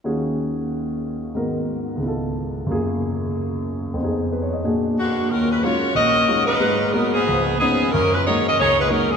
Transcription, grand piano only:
X:1
M:4/4
L:1/8
Q:"Swing" 1/4=183
K:Ebm
V:1 name="Grand piano"
[E,,E,DFGA]8 | [A,,E,CGB]4 [D,,D,C=EF=A]4 | [G,,D,B,FA]8 | [F,,F,CEA]4 [B,,B,=DGA]4 |
z8 | z8 | z8 |]
V:2 name="Grand piano"
z8 | z8 | z8 | z2 (3c d e z4 |
E,,2 [G,A,DEF] z B,,,2 [G,A,DEF] z | [A,,A,]2 [A,B,CG] z [D,,F,]2 [F,CDE] z | G,,2 [G,A,B,E] z D,,2 [G,A,B,E] z |]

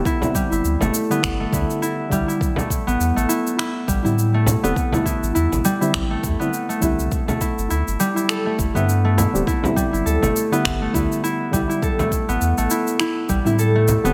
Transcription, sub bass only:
X:1
M:4/4
L:1/16
Q:"Swing 16ths" 1/4=102
K:Am
V:1 name="Sub bass" clef=bass
z3 G,,, D,, G,,, z2 G,,, z D,, z3 C,, z | z3 A,,, E,, A,,, z4 A,,, A,,4 E,,, | z3 A,,, E,, A,,, z2 A,,, z E,, z3 C,, C,, | z3 G,,, D,, G,,, z4 G,,, G,,4 D,,, |
z3 G,,, D,, G,,, z2 G,,, z D,, z3 C,, z | z3 A,,, E,, A,,, z4 A,,, A,,4 E,,, |]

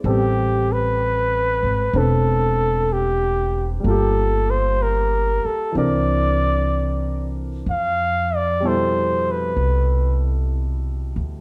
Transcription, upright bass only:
X:1
M:4/4
L:1/8
Q:"Swing" 1/4=63
K:Am
V:1 name="Upright bass" clef=bass
A,,,3 _A,,, E,,,4 | G,,,3 z C,,4 | F,,4 C,,3 D,, |]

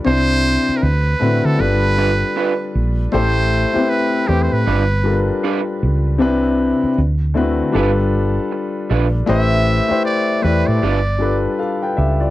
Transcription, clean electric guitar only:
X:1
M:4/4
L:1/8
Q:"Swing 16ths" 1/4=78
K:Gmix
V:1 name="Clean electric guitar"
z4 z [G,DFB] [G,DFB] z | z4 [G,DFB] z [G,DFB] z | z4 [G,DFB] z2 [G,DFB] | z4 [G,DFB] z3 |]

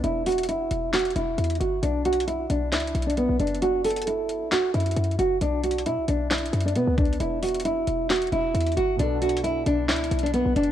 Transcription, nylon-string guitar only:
X:1
M:4/4
L:1/16
Q:1/4=134
K:Bm
V:1 name="Nylon-string guitar"
E2 F2 E4 F2 E4 F2 | D2 F2 E2 D2 E3 D B,2 D2 | F2 A2 E4 F2 E4 F2 | D2 F2 E2 D2 E3 D B,2 D2 |
E2 F2 E4 F2 E4 F2 | D2 F2 E2 D2 E3 D B,2 D2 |]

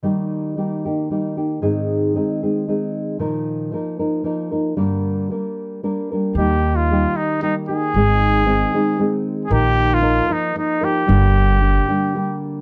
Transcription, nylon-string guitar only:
X:1
M:3/4
L:1/8
Q:1/4=114
K:Eb
V:1 name="Nylon-string guitar"
[E,G,B,EG]2 [G,B,EG] [B,EG] [G,B,EG] [B,EG] | [A,,E,A,CEA]2 [A,CEA] [A,CEA] [A,CEA]2 | [B,,E,F,B,EB]2 [F,B,EB] [F,B,EB] [F,B,EB] [F,B,EB] | [G,,D,G,B,DB]2 [G,B,DB]2 [G,B,DB] [G,B,DB] |
[E,G,B,EG]2 [G,B,EG]2 [G,B,EG] [B,EG] | [A,,E,A,CEA]2 [A,CEA] [A,CEA] [A,CEA]2 | [B,,E,F,B,EB]2 [F,B,EB] [F,B,EB] [F,B,EB] [F,B,EB] | [G,,D,G,B,DG]2 [G,B,DG] [G,B,DG] [G,B,DG]2 |]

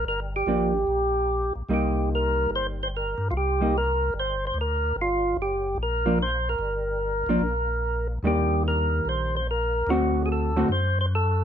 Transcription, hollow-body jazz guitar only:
X:1
M:4/4
L:1/8
Q:"Swing" 1/4=147
K:Gm
V:1 name="Hollow-body jazz guitar"
z2 [F,B,D] z4 z | [G,B,E]4- [G,B,E] z3 | z [G,B,E] z6 | z4 z [F,B,D] z2 |
z3 [F,B,D] z4 | [E,G,B,D]4- [E,G,B,D] z3 | [D,A,C^F]3 [D,A,CF] z4 |]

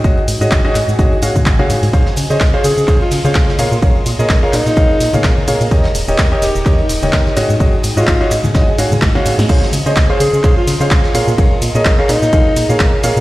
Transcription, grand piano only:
X:1
M:4/4
L:1/16
Q:"Swing 16ths" 1/4=127
K:Db
V:1 name="Grand piano"
[GAde] z2 [GAde]2 [GAde] z2 [GAde] z [GAdf] z2 [GAdf]2 z | [Acdf] z2 [Acde]2 [Acdf] z2 [Acdf] z2 [Acdf]3 [ABdf] z | [ABdf] z2 [ABde]2 [ABdf] z2 [ABdf] z2 [ABdf]3 [ABdf] z | [=GBde] z2 [GBde]2 [GBde] z2 [GBde] z2 [GBde]3 [_GAde] z |
[GAde] z2 [GAde]2 [GAde] z2 [GAde] z [GAdf] z2 [GAdf]2 z | [Acdf] z2 [Acde]2 [Acdf] z2 [Acdf] z2 [Acdf]3 [ABdf] z | [ABdf] z2 [ABde]2 [ABdf] z2 [ABdf] z2 [ABdf]3 [ABdf] z |]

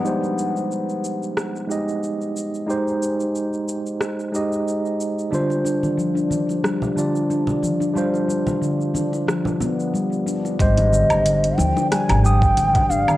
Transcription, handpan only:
X:1
M:4/4
L:1/16
Q:"Swing 16ths" 1/4=91
K:none
V:1 name="Handpan" clef=bass
z16 | z16 | D, z D2 F, D G, z G, z D, z D2 F, D | G, z G, z D, z D2 F, D B, z G, z D z |
G, z D, z D,2 F, D G, z G, z D, z D2 |]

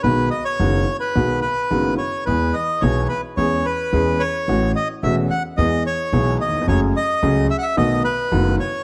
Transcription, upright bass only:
X:1
M:4/4
L:1/8
Q:1/4=109
K:E
V:1 name="Upright bass" clef=bass
B,,, z F,,, z B,,, z F,,, z | E,, z B,,, z E,, z E,, z | A,,, z E,,, z E,, z B,,, z | F,,, z C,, z B,,, z F,,, z |]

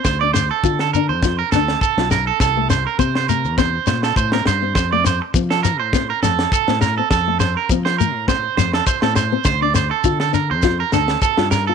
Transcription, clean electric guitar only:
X:1
M:4/4
L:1/16
Q:"Swing 16ths" 1/4=102
K:F
V:1 name="Clean electric guitar"
c d c A2 A B c2 B A2 A2 B A | A2 c B c c B2 c2 c A c B c2 | c d c z2 A B c2 B A2 A2 B A | A2 c B z c B2 c2 c A c A c2 |
c d c A2 A B c2 B A2 A2 B A |]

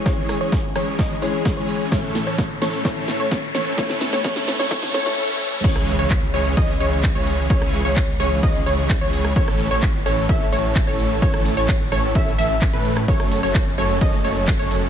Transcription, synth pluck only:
X:1
M:4/4
L:1/16
Q:1/4=129
K:C#m
V:1 name="Synth pluck"
c3 c z2 c2 d z c3 c3 | c3 c z2 c2 c3 c z2 c2 | c3 c c3 c c2 c2 z4 | c3 c z2 c2 d z c3 c3 |
c3 c z2 c2 d z c3 c3 | c3 c z2 c2 e z c3 c3 | c3 c z2 c2 e z e z2 B2 z | c3 c z2 c2 d z c3 c3 |]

